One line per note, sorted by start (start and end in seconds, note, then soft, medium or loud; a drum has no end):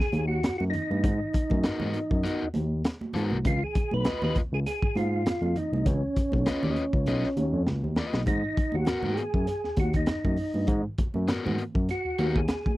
0.00 0.26 G#4 loud
0.00 snare soft
0.12 0.39 D#2 medium
0.12 closed hi-hat medium
0.12 muted conga soft
0.12 high conga medium
0.28 0.57 F#4 medium
0.43 0.50 F#2 soft
0.43 snare loud
0.43 closed hi-hat loud
0.43 muted conga soft
0.58 0.72 F#2 medium
0.58 0.65 F#4 loud
0.58 high conga medium
0.70 2.49 D#4 medium
0.70 closed hi-hat medium
0.70 muted conga soft
0.70 low conga medium
0.90 1.02 G2 medium
0.90 high conga medium
1.04 1.19 G#2 medium
1.04 kick loud
1.04 closed hi-hat medium
1.04 muted conga soft
1.04 low conga medium
1.34 kick loud
1.34 closed hi-hat medium
1.34 muted conga soft
1.50 1.62 F#2 medium
1.50 kick medium
1.50 high conga medium
1.63 1.71 G#2 soft
1.63 1.79 B3 medium
1.63 1.80 F#4 medium
1.63 1.79 A#4 medium
1.63 snare loud
1.63 closed hi-hat medium
1.80 1.93 G#2 medium
1.80 1.97 B3 medium
1.80 1.97 F#4 medium
1.80 1.97 A#4 medium
1.80 high conga medium
1.80 low conga medium
1.94 closed hi-hat medium
1.94 muted conga soft
2.11 2.23 F#2 medium
2.11 kick medium
2.23 2.43 B3 medium
2.23 2.43 F#4 medium
2.23 2.43 A#4 medium
2.23 snare soft
2.23 closed hi-hat medium
2.23 muted conga soft
2.42 2.47 D#2 medium
2.54 2.81 D#2 medium
2.54 closed hi-hat medium
2.54 muted conga soft
2.54 high conga medium
2.84 snare loud
2.84 closed hi-hat loud
3.01 high conga medium
3.13 3.30 G#2 medium
3.13 3.36 B3 medium
3.13 3.36 F#4 medium
3.13 3.36 A#4 medium
3.13 closed hi-hat medium
3.13 muted conga soft
3.13 low conga medium
3.30 3.44 C2 medium
3.30 high conga medium
3.45 3.60 C#2 loud
3.45 3.63 F4 loud
3.45 kick loud
3.45 closed hi-hat medium
3.45 muted conga soft
3.45 low conga medium
3.64 3.94 G#4 loud
3.75 kick loud
3.75 closed hi-hat medium
3.75 muted conga soft
3.91 4.04 B1 loud
3.91 4.23 B4 loud
3.91 high conga medium
4.05 4.13 D#2 soft
4.05 4.21 F4 soft
4.05 4.21 B4 medium
4.05 4.21 D#5 medium
4.05 snare loud
4.05 closed hi-hat medium
4.05 muted conga soft
4.22 4.34 D#2 medium
4.22 4.39 F4 medium
4.22 4.39 B4 medium
4.22 4.37 B4 loud
4.22 4.38 D#5 medium
4.22 high conga medium
4.22 low conga medium
4.35 kick medium
4.35 closed hi-hat medium
4.35 muted conga soft
4.52 4.64 C#2 medium
4.52 4.60 G#4 loud
4.66 4.97 G#4 medium
4.66 snare soft
4.66 closed hi-hat loud
4.82 4.88 G#2 medium
4.82 kick medium
4.95 5.22 G#2 medium
4.95 5.58 F4 medium
4.95 closed hi-hat medium
4.95 high conga medium
5.26 5.32 F2 soft
5.26 snare loud
5.26 closed hi-hat loud
5.26 muted conga soft
5.42 5.54 F2 medium
5.42 high conga medium
5.56 5.88 D#4 medium
5.56 closed hi-hat medium
5.56 low conga medium
5.72 5.84 C2 medium
5.72 high conga medium
5.86 6.01 C#2 loud
5.86 7.63 C#4 medium
5.86 kick loud
5.86 closed hi-hat medium
5.86 muted conga soft
5.86 low conga medium
6.16 kick loud
6.16 closed hi-hat medium
6.32 6.45 B1 loud
6.32 kick medium
6.32 high conga medium
6.46 6.53 D#2 soft
6.46 6.62 F4 medium
6.46 6.62 B4 medium
6.46 6.62 D#5 medium
6.46 snare loud
6.46 closed hi-hat medium
6.46 muted conga soft
6.63 6.75 D#2 medium
6.63 6.82 F4 medium
6.63 6.82 B4 medium
6.63 6.82 D#5 medium
6.63 high conga medium
6.63 low conga medium
6.76 closed hi-hat medium
6.93 7.05 C#2 medium
6.93 kick loud
7.06 7.21 B1 loud
7.06 7.26 F4 medium
7.06 7.26 B4 medium
7.06 7.27 D#5 medium
7.06 snare soft
7.06 closed hi-hat medium
7.06 muted conga soft
7.24 snare soft
7.37 7.52 D#2 medium
7.37 closed hi-hat medium
7.37 high conga medium
7.54 7.65 F2 medium
7.66 7.81 C#2 medium
7.66 snare medium
7.66 muted conga soft
7.66 high conga soft
7.83 7.95 D#2 medium
7.83 high conga medium
7.96 8.18 F4 medium
7.96 8.19 B4 medium
7.96 8.19 D#5 medium
7.96 snare medium
7.96 low conga medium
8.13 8.25 B1 medium
8.13 snare medium
8.13 high conga medium
8.26 8.42 G#2 loud
8.26 8.76 D#4 loud
8.26 kick loud
8.26 closed hi-hat medium
8.26 low conga medium
8.57 kick loud
8.57 closed hi-hat medium
8.72 8.86 D#2 medium
8.72 9.13 F#4 medium
8.72 high conga medium
8.85 8.94 G#2 soft
8.85 9.03 B3 medium
8.85 9.03 F#4 medium
8.85 9.03 A#4 medium
8.85 snare loud
8.85 closed hi-hat medium
8.85 muted conga soft
9.03 9.16 G#2 medium
9.03 9.21 B3 medium
9.03 9.21 F#4 medium
9.03 9.21 A#4 medium
9.03 high conga medium
9.03 low conga medium
9.12 9.18 G4 medium
9.17 9.80 G#4 loud
9.17 closed hi-hat medium
9.34 9.46 F#2 medium
9.34 kick medium
9.47 snare soft
9.47 closed hi-hat medium
9.64 9.70 D#2 soft
9.64 snare soft
9.77 10.04 D#2 medium
9.77 9.96 F#4 medium
9.77 kick medium
9.77 closed hi-hat medium
9.77 high conga medium
9.93 10.82 D#4 medium
9.93 kick medium
9.93 closed hi-hat medium
10.06 10.15 F#2 soft
10.06 snare loud
10.06 closed hi-hat medium
10.24 10.36 F#2 medium
10.24 kick medium
10.24 high conga medium
10.37 open hi-hat medium
10.37 muted conga soft
10.54 10.67 G2 medium
10.54 high conga medium
10.67 10.83 G#2 loud
10.67 kick loud
10.67 closed hi-hat medium
10.67 muted conga soft
10.67 low conga medium
10.98 kick loud
10.98 closed hi-hat medium
10.98 muted conga soft
11.14 11.27 F#2 loud
11.14 high conga medium
11.28 11.35 G#2 medium
11.28 11.44 B3 medium
11.28 11.44 F#4 medium
11.28 11.44 A#4 medium
11.28 snare loud
11.28 closed hi-hat medium
11.28 muted conga soft
11.45 11.57 G#2 medium
11.45 11.62 B3 medium
11.45 11.61 F#4 medium
11.45 11.61 A#4 medium
11.45 high conga medium
11.45 low conga medium
11.58 closed hi-hat medium
11.75 11.87 F#2 medium
11.75 kick medium
11.89 12.38 F#4 medium
11.89 snare soft
11.89 closed hi-hat medium
11.89 muted conga soft
12.05 12.10 D#2 medium
12.18 12.45 D#2 loud
12.18 12.38 B3 medium
12.18 12.38 F#4 loud
12.18 12.38 A#4 loud
12.18 closed hi-hat medium
12.18 high conga medium
12.36 12.77 G#4 medium
12.36 kick medium
12.48 snare loud
12.48 closed hi-hat loud
12.48 muted conga soft
12.66 kick loud
12.66 high conga medium